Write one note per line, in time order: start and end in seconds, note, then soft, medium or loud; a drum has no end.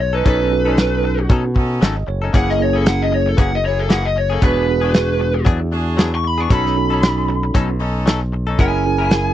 0.00 0.22 B1 loud
0.00 0.14 C#5 loud
0.00 muted clean electric guitar stroke soft
0.13 0.25 C#4 soft
0.13 0.25 D#4 medium
0.13 0.25 A4 medium
0.13 0.25 B4 medium
0.25 1.26 B1 loud
0.25 0.40 F#3 medium
0.25 0.46 C#4 medium
0.25 0.50 C#4 medium
0.25 0.41 C#4 medium
0.25 0.46 D#4 medium
0.25 0.50 D#4 medium
0.25 0.40 D#4 medium
0.25 0.50 F#4 medium
0.25 0.47 A4 medium
0.25 0.51 A4 medium
0.25 0.38 A4 medium
0.25 1.27 B4 loud
0.25 kick loud
0.25 closed hi-hat medium
0.40 0.51 C#4 soft
0.40 0.51 D#4 medium
0.40 0.51 A4 medium
0.51 1.49 C#4 medium
0.51 1.49 D#4 medium
0.51 1.49 F#4 medium
0.51 1.49 A4 medium
0.51 muted clean electric guitar stroke soft
0.65 1.10 C#4 medium
0.65 0.77 C#4 medium
0.65 1.11 D#4 medium
0.65 0.78 D#4 soft
0.65 0.77 A4 medium
0.65 1.11 A4 medium
0.77 muted clean electric guitar stroke soft
0.77 snare loud
0.77 closed hi-hat medium
1.04 muted clean electric guitar stroke soft
1.19 muted clean electric guitar stroke medium
1.30 1.79 B2 medium
1.30 1.44 F#3 medium
1.30 1.45 C#4 medium
1.30 1.44 D#4 medium
1.30 1.43 A4 loud
1.30 kick loud
1.30 closed hi-hat medium
1.55 1.96 C#4 medium
1.55 1.97 D#4 medium
1.55 1.97 A4 medium
1.55 1.80 F#5 medium
1.55 muted clean electric guitar stroke soft
1.55 kick medium
1.81 2.06 G#1 medium
1.81 1.96 F#3 medium
1.81 1.97 C#4 medium
1.81 1.96 D#4 medium
1.81 1.95 A4 medium
1.81 2.06 D#5 medium
1.81 snare loud
1.81 closed hi-hat medium
1.96 muted clean electric guitar stroke medium
2.07 2.31 F#1 medium
2.07 2.32 C#5 medium
2.07 muted clean electric guitar stroke soft
2.22 2.33 C#4 soft
2.22 2.34 D#4 soft
2.22 2.34 A4 soft
2.33 3.34 F#1 loud
2.33 2.48 E3 medium
2.33 2.54 A#3 medium
2.33 2.58 A#3 medium
2.33 2.49 A#3 medium
2.33 2.58 C#4 medium
2.33 2.48 C#4 medium
2.33 2.54 E4 medium
2.33 2.58 E4 medium
2.33 2.59 G#4 medium
2.33 2.47 G#4 medium
2.33 2.55 G#4 medium
2.33 2.50 F#5 loud
2.33 kick loud
2.33 closed hi-hat medium
2.48 2.59 A#3 soft
2.48 2.59 C#4 soft
2.48 2.60 G#4 medium
2.48 2.62 D#5 medium
2.48 snare soft
2.59 3.57 A#3 medium
2.59 3.57 C#4 medium
2.59 3.57 E4 medium
2.59 3.57 G#4 medium
2.59 2.75 C#5 medium
2.59 muted clean electric guitar stroke soft
2.73 3.19 A#3 medium
2.73 2.84 A#3 soft
2.73 2.85 C#4 soft
2.73 3.19 E4 medium
2.73 2.85 G#4 medium
2.73 3.20 G#4 medium
2.73 2.86 A4 medium
2.85 3.01 F#5 loud
2.85 muted clean electric guitar stroke soft
2.85 snare loud
2.85 closed hi-hat medium
3.02 3.14 D#5 medium
3.11 3.27 C#5 loud
3.11 muted clean electric guitar stroke soft
3.26 3.39 A4 loud
3.26 muted clean electric guitar stroke soft
3.37 4.39 F#1 loud
3.37 3.52 E3 medium
3.37 3.52 A#3 medium
3.37 3.52 C#4 medium
3.37 3.51 G#4 medium
3.37 3.53 F#5 loud
3.37 kick loud
3.37 closed hi-hat medium
3.52 3.65 D#5 medium
3.52 muted clean electric guitar stroke soft
3.63 4.04 A#3 medium
3.63 4.05 E4 medium
3.63 4.05 G#4 medium
3.63 3.79 C#5 loud
3.63 muted clean electric guitar stroke soft
3.80 3.90 A4 loud
3.89 4.04 E3 medium
3.89 4.05 A#3 medium
3.89 4.04 C#4 medium
3.89 4.03 G#4 medium
3.89 4.05 F#5 loud
3.89 snare loud
3.89 closed hi-hat medium
4.04 4.18 D#5 medium
4.04 muted clean electric guitar stroke soft
4.16 4.31 C#5 loud
4.16 muted clean electric guitar stroke soft
4.30 4.42 A#3 soft
4.30 4.43 C#4 medium
4.30 4.42 G#4 soft
4.30 4.43 A4 medium
4.42 5.43 E1 loud
4.42 4.57 F#3 medium
4.42 4.66 B3 medium
4.42 4.57 B3 medium
4.42 4.62 D4 medium
4.42 4.67 D4 medium
4.42 4.56 D4 medium
4.42 4.67 F#4 medium
4.42 4.63 F#4 medium
4.42 4.67 G#4 medium
4.42 4.63 G#4 medium
4.42 4.55 G#4 medium
4.42 5.44 B4 loud
4.42 kick loud
4.42 closed hi-hat medium
4.56 4.67 B3 soft
4.56 4.67 D4 soft
4.56 4.68 G#4 medium
4.67 5.65 B3 medium
4.67 5.65 D4 medium
4.67 5.66 F#4 medium
4.67 5.66 G#4 medium
4.67 muted clean electric guitar stroke soft
4.81 4.93 B3 soft
4.81 5.27 D4 medium
4.81 4.93 D4 medium
4.81 5.28 F#4 medium
4.81 4.94 G#4 medium
4.81 5.28 G#4 medium
4.94 muted clean electric guitar stroke soft
4.94 snare loud
4.94 closed hi-hat medium
5.20 muted clean electric guitar stroke soft
5.34 muted clean electric guitar stroke soft
5.45 6.47 E2 medium
5.45 5.60 F#3 medium
5.45 5.60 B3 medium
5.45 5.60 D4 loud
5.45 5.59 G#4 loud
5.45 kick loud
5.45 closed hi-hat medium
5.60 muted clean electric guitar stroke soft
5.71 6.12 D4 loud
5.71 6.13 F#4 medium
5.71 6.13 G#4 medium
5.71 muted clean electric guitar stroke soft
5.97 6.12 F#3 medium
5.97 6.12 B3 medium
5.97 6.11 D4 medium
5.97 6.11 G#4 medium
5.97 snare loud
5.97 closed hi-hat medium
6.12 6.27 C#6 loud
6.12 muted clean electric guitar stroke soft
6.23 6.40 B5 loud
6.23 muted clean electric guitar stroke soft
6.38 6.50 B3 soft
6.38 6.51 D4 medium
6.38 6.50 G#4 medium
6.38 6.52 C#6 medium
6.50 7.51 B1 loud
6.50 6.65 F#3 medium
6.50 6.71 C#4 medium
6.50 6.65 C#4 medium
6.50 6.75 C#4 medium
6.50 6.71 D#4 medium
6.50 6.64 D#4 medium
6.50 6.75 D#4 medium
6.50 6.75 F#4 medium
6.50 6.71 A4 medium
6.50 6.63 A4 medium
6.50 6.76 A4 medium
6.50 8.04 B5 loud
6.50 kick loud
6.50 closed hi-hat medium
6.64 6.76 C#4 soft
6.64 6.76 D#4 soft
6.64 6.76 A4 medium
6.64 snare soft
6.76 7.73 C#4 medium
6.76 7.74 D#4 medium
6.76 7.74 F#4 medium
6.76 7.74 A4 medium
6.76 muted clean electric guitar stroke soft
6.89 7.35 C#4 medium
6.89 7.35 D#4 medium
6.89 7.03 D#4 soft
6.89 7.02 A4 medium
6.89 7.36 A4 medium
6.93 7.02 C#4 medium
7.03 snare loud
7.03 closed hi-hat medium
7.29 muted clean electric guitar stroke medium
7.43 muted clean electric guitar stroke soft
7.54 8.55 B1 loud
7.54 7.69 F#3 medium
7.54 7.70 C#4 medium
7.54 7.69 D#4 medium
7.54 7.68 A4 medium
7.54 kick loud
7.54 closed hi-hat medium
7.70 muted clean electric guitar stroke soft
7.79 8.21 C#4 medium
7.79 8.21 D#4 medium
7.79 8.21 A4 loud
7.79 muted clean electric guitar stroke soft
8.06 8.21 F#3 medium
8.06 8.22 C#4 medium
8.06 8.21 D#4 medium
8.06 8.20 A4 medium
8.06 snare loud
8.06 closed hi-hat medium
8.21 muted clean electric guitar stroke soft
8.33 muted clean electric guitar stroke soft
8.47 8.58 C#4 soft
8.47 8.59 D#4 medium
8.47 8.59 A4 medium
8.58 9.34 F#1 loud
8.58 8.73 G#3 medium
8.58 8.79 A#3 medium
8.58 8.83 C#4 medium
8.58 8.74 C#4 medium
8.58 8.79 E4 medium
8.58 8.83 E4 medium
8.58 8.73 E4 medium
8.58 8.83 G#4 medium
8.58 8.80 G#4 medium
8.58 8.84 A#4 medium
8.58 8.71 A#4 medium
8.58 9.34 G#5 loud
8.58 kick loud
8.58 closed hi-hat medium
8.72 8.84 C#4 soft
8.72 8.84 E4 soft
8.72 8.84 A#4 medium
8.84 9.34 C#4 medium
8.84 9.34 E4 medium
8.84 9.34 G#4 medium
8.84 9.34 A#4 medium
8.84 muted clean electric guitar stroke soft
8.98 9.34 A#3 medium
8.98 9.34 E4 medium
8.98 9.11 E4 medium
8.98 9.34 G#4 medium
8.98 9.10 A#4 medium
9.02 9.10 C#4 soft
9.11 snare loud
9.11 closed hi-hat medium